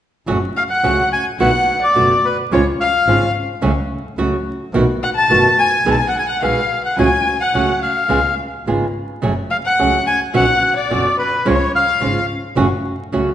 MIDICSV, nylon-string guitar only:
0, 0, Header, 1, 2, 480
1, 0, Start_track
1, 0, Key_signature, 3, "minor"
1, 0, Tempo, 558659
1, 242, Time_signature, 4, 2, 24, 8
1, 11465, End_track
2, 0, Start_track
2, 0, Title_t, "Nylon-string guitar"
2, 0, Program_c, 0, 24
2, 231, Note_on_c, 0, 49, 67
2, 234, Note_on_c, 0, 54, 69
2, 236, Note_on_c, 0, 57, 66
2, 239, Note_on_c, 0, 66, 76
2, 240, Note_on_c, 0, 61, 66
2, 315, Note_off_c, 0, 49, 0
2, 316, Note_off_c, 0, 54, 0
2, 317, Note_off_c, 0, 57, 0
2, 319, Note_off_c, 0, 61, 0
2, 319, Note_off_c, 0, 66, 0
2, 716, Note_on_c, 0, 49, 55
2, 717, Note_on_c, 0, 54, 53
2, 722, Note_on_c, 0, 61, 60
2, 725, Note_on_c, 0, 57, 56
2, 725, Note_on_c, 0, 66, 60
2, 868, Note_off_c, 0, 49, 0
2, 868, Note_off_c, 0, 54, 0
2, 871, Note_off_c, 0, 61, 0
2, 872, Note_off_c, 0, 57, 0
2, 873, Note_off_c, 0, 66, 0
2, 1202, Note_on_c, 0, 47, 62
2, 1202, Note_on_c, 0, 50, 72
2, 1205, Note_on_c, 0, 66, 71
2, 1206, Note_on_c, 0, 57, 66
2, 1208, Note_on_c, 0, 59, 75
2, 1282, Note_off_c, 0, 47, 0
2, 1283, Note_off_c, 0, 50, 0
2, 1284, Note_off_c, 0, 57, 0
2, 1284, Note_off_c, 0, 66, 0
2, 1286, Note_off_c, 0, 59, 0
2, 1676, Note_on_c, 0, 47, 51
2, 1681, Note_on_c, 0, 50, 54
2, 1683, Note_on_c, 0, 57, 53
2, 1685, Note_on_c, 0, 66, 52
2, 1687, Note_on_c, 0, 59, 47
2, 1828, Note_off_c, 0, 47, 0
2, 1830, Note_off_c, 0, 50, 0
2, 1831, Note_off_c, 0, 57, 0
2, 1832, Note_off_c, 0, 66, 0
2, 1833, Note_off_c, 0, 59, 0
2, 2162, Note_on_c, 0, 49, 66
2, 2165, Note_on_c, 0, 53, 66
2, 2166, Note_on_c, 0, 56, 73
2, 2171, Note_on_c, 0, 61, 80
2, 2175, Note_on_c, 0, 65, 74
2, 2241, Note_off_c, 0, 49, 0
2, 2242, Note_off_c, 0, 53, 0
2, 2243, Note_off_c, 0, 56, 0
2, 2245, Note_off_c, 0, 61, 0
2, 2247, Note_off_c, 0, 65, 0
2, 2642, Note_on_c, 0, 53, 54
2, 2643, Note_on_c, 0, 49, 52
2, 2647, Note_on_c, 0, 56, 53
2, 2652, Note_on_c, 0, 61, 65
2, 2652, Note_on_c, 0, 65, 69
2, 2786, Note_off_c, 0, 53, 0
2, 2787, Note_off_c, 0, 49, 0
2, 2789, Note_off_c, 0, 56, 0
2, 2792, Note_off_c, 0, 61, 0
2, 2792, Note_off_c, 0, 65, 0
2, 3108, Note_on_c, 0, 49, 78
2, 3111, Note_on_c, 0, 54, 70
2, 3111, Note_on_c, 0, 57, 74
2, 3113, Note_on_c, 0, 61, 76
2, 3115, Note_on_c, 0, 66, 80
2, 3190, Note_off_c, 0, 49, 0
2, 3191, Note_off_c, 0, 54, 0
2, 3191, Note_off_c, 0, 57, 0
2, 3192, Note_off_c, 0, 61, 0
2, 3193, Note_off_c, 0, 66, 0
2, 3591, Note_on_c, 0, 49, 57
2, 3595, Note_on_c, 0, 54, 56
2, 3595, Note_on_c, 0, 57, 53
2, 3597, Note_on_c, 0, 61, 56
2, 3597, Note_on_c, 0, 66, 63
2, 3738, Note_off_c, 0, 49, 0
2, 3739, Note_off_c, 0, 54, 0
2, 3739, Note_off_c, 0, 57, 0
2, 3741, Note_off_c, 0, 61, 0
2, 3741, Note_off_c, 0, 66, 0
2, 4074, Note_on_c, 0, 47, 69
2, 4074, Note_on_c, 0, 51, 76
2, 4075, Note_on_c, 0, 57, 77
2, 4078, Note_on_c, 0, 59, 73
2, 4082, Note_on_c, 0, 66, 74
2, 4150, Note_off_c, 0, 47, 0
2, 4151, Note_off_c, 0, 51, 0
2, 4151, Note_off_c, 0, 57, 0
2, 4152, Note_off_c, 0, 59, 0
2, 4154, Note_off_c, 0, 66, 0
2, 4552, Note_on_c, 0, 47, 56
2, 4554, Note_on_c, 0, 57, 56
2, 4557, Note_on_c, 0, 51, 65
2, 4559, Note_on_c, 0, 59, 61
2, 4565, Note_on_c, 0, 66, 71
2, 4697, Note_off_c, 0, 47, 0
2, 4698, Note_off_c, 0, 57, 0
2, 4700, Note_off_c, 0, 51, 0
2, 4701, Note_off_c, 0, 59, 0
2, 4704, Note_off_c, 0, 66, 0
2, 5030, Note_on_c, 0, 47, 66
2, 5034, Note_on_c, 0, 50, 73
2, 5034, Note_on_c, 0, 56, 69
2, 5037, Note_on_c, 0, 59, 75
2, 5040, Note_on_c, 0, 68, 75
2, 5109, Note_off_c, 0, 47, 0
2, 5111, Note_off_c, 0, 50, 0
2, 5111, Note_off_c, 0, 56, 0
2, 5112, Note_off_c, 0, 59, 0
2, 5114, Note_off_c, 0, 68, 0
2, 5516, Note_on_c, 0, 50, 55
2, 5517, Note_on_c, 0, 47, 50
2, 5522, Note_on_c, 0, 56, 58
2, 5523, Note_on_c, 0, 59, 56
2, 5525, Note_on_c, 0, 68, 55
2, 5663, Note_off_c, 0, 47, 0
2, 5663, Note_off_c, 0, 50, 0
2, 5666, Note_off_c, 0, 56, 0
2, 5666, Note_off_c, 0, 59, 0
2, 5667, Note_off_c, 0, 68, 0
2, 5994, Note_on_c, 0, 49, 66
2, 6000, Note_on_c, 0, 57, 69
2, 6003, Note_on_c, 0, 54, 73
2, 6003, Note_on_c, 0, 61, 80
2, 6010, Note_on_c, 0, 66, 75
2, 6074, Note_off_c, 0, 49, 0
2, 6077, Note_off_c, 0, 57, 0
2, 6078, Note_off_c, 0, 61, 0
2, 6079, Note_off_c, 0, 54, 0
2, 6082, Note_off_c, 0, 66, 0
2, 6481, Note_on_c, 0, 49, 55
2, 6482, Note_on_c, 0, 54, 58
2, 6486, Note_on_c, 0, 57, 64
2, 6486, Note_on_c, 0, 61, 65
2, 6489, Note_on_c, 0, 66, 60
2, 6626, Note_off_c, 0, 49, 0
2, 6626, Note_off_c, 0, 54, 0
2, 6628, Note_off_c, 0, 57, 0
2, 6628, Note_off_c, 0, 61, 0
2, 6630, Note_off_c, 0, 66, 0
2, 6947, Note_on_c, 0, 49, 67
2, 6954, Note_on_c, 0, 56, 67
2, 6956, Note_on_c, 0, 59, 71
2, 6957, Note_on_c, 0, 65, 71
2, 6960, Note_on_c, 0, 68, 78
2, 7031, Note_off_c, 0, 49, 0
2, 7035, Note_off_c, 0, 56, 0
2, 7036, Note_off_c, 0, 59, 0
2, 7036, Note_off_c, 0, 65, 0
2, 7038, Note_off_c, 0, 68, 0
2, 7451, Note_on_c, 0, 49, 48
2, 7453, Note_on_c, 0, 56, 48
2, 7455, Note_on_c, 0, 59, 56
2, 7455, Note_on_c, 0, 65, 58
2, 7460, Note_on_c, 0, 68, 58
2, 7597, Note_off_c, 0, 49, 0
2, 7598, Note_off_c, 0, 56, 0
2, 7599, Note_off_c, 0, 59, 0
2, 7599, Note_off_c, 0, 65, 0
2, 7601, Note_off_c, 0, 68, 0
2, 7919, Note_on_c, 0, 49, 60
2, 7922, Note_on_c, 0, 54, 68
2, 7929, Note_on_c, 0, 57, 68
2, 7933, Note_on_c, 0, 61, 65
2, 7934, Note_on_c, 0, 68, 68
2, 8004, Note_off_c, 0, 49, 0
2, 8005, Note_off_c, 0, 54, 0
2, 8008, Note_off_c, 0, 57, 0
2, 8010, Note_off_c, 0, 61, 0
2, 8011, Note_off_c, 0, 68, 0
2, 8411, Note_on_c, 0, 54, 56
2, 8413, Note_on_c, 0, 49, 55
2, 8415, Note_on_c, 0, 61, 64
2, 8418, Note_on_c, 0, 57, 54
2, 8418, Note_on_c, 0, 68, 58
2, 8558, Note_off_c, 0, 54, 0
2, 8559, Note_off_c, 0, 49, 0
2, 8560, Note_off_c, 0, 61, 0
2, 8562, Note_off_c, 0, 57, 0
2, 8562, Note_off_c, 0, 68, 0
2, 8882, Note_on_c, 0, 47, 69
2, 8885, Note_on_c, 0, 50, 67
2, 8887, Note_on_c, 0, 59, 77
2, 8891, Note_on_c, 0, 66, 82
2, 8892, Note_on_c, 0, 61, 75
2, 8965, Note_off_c, 0, 47, 0
2, 8966, Note_off_c, 0, 50, 0
2, 8967, Note_off_c, 0, 59, 0
2, 8970, Note_off_c, 0, 61, 0
2, 8970, Note_off_c, 0, 66, 0
2, 9368, Note_on_c, 0, 47, 48
2, 9370, Note_on_c, 0, 50, 48
2, 9370, Note_on_c, 0, 59, 51
2, 9375, Note_on_c, 0, 66, 58
2, 9376, Note_on_c, 0, 61, 48
2, 9515, Note_off_c, 0, 47, 0
2, 9516, Note_off_c, 0, 50, 0
2, 9516, Note_off_c, 0, 59, 0
2, 9519, Note_off_c, 0, 61, 0
2, 9519, Note_off_c, 0, 66, 0
2, 9841, Note_on_c, 0, 49, 69
2, 9845, Note_on_c, 0, 65, 78
2, 9846, Note_on_c, 0, 53, 77
2, 9847, Note_on_c, 0, 56, 74
2, 9847, Note_on_c, 0, 61, 78
2, 9922, Note_off_c, 0, 49, 0
2, 9924, Note_off_c, 0, 53, 0
2, 9924, Note_off_c, 0, 65, 0
2, 9925, Note_off_c, 0, 56, 0
2, 9925, Note_off_c, 0, 61, 0
2, 10316, Note_on_c, 0, 49, 55
2, 10320, Note_on_c, 0, 53, 57
2, 10322, Note_on_c, 0, 61, 59
2, 10325, Note_on_c, 0, 56, 60
2, 10330, Note_on_c, 0, 65, 63
2, 10466, Note_off_c, 0, 49, 0
2, 10467, Note_off_c, 0, 53, 0
2, 10469, Note_off_c, 0, 61, 0
2, 10470, Note_off_c, 0, 56, 0
2, 10473, Note_off_c, 0, 65, 0
2, 10791, Note_on_c, 0, 49, 65
2, 10797, Note_on_c, 0, 57, 75
2, 10797, Note_on_c, 0, 61, 83
2, 10798, Note_on_c, 0, 54, 66
2, 10799, Note_on_c, 0, 66, 78
2, 10872, Note_off_c, 0, 49, 0
2, 10875, Note_off_c, 0, 61, 0
2, 10876, Note_off_c, 0, 54, 0
2, 10876, Note_off_c, 0, 57, 0
2, 10876, Note_off_c, 0, 66, 0
2, 11276, Note_on_c, 0, 49, 54
2, 11279, Note_on_c, 0, 54, 52
2, 11280, Note_on_c, 0, 57, 57
2, 11282, Note_on_c, 0, 61, 58
2, 11285, Note_on_c, 0, 66, 62
2, 11420, Note_off_c, 0, 49, 0
2, 11422, Note_off_c, 0, 54, 0
2, 11422, Note_off_c, 0, 57, 0
2, 11423, Note_off_c, 0, 61, 0
2, 11425, Note_off_c, 0, 66, 0
2, 11465, End_track
0, 0, End_of_file